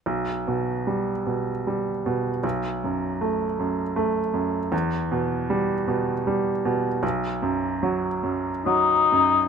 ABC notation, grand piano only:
X:1
M:3/4
L:1/8
Q:1/4=77
K:G
V:1 name="Grand piano" clef=bass
B,,, B,, G, B,, G, B,, | B,,, F,, A, F,, A, F,, | E,, B,, G, B,, G, B,, | B,,, F,, F, F,, F, F,, |]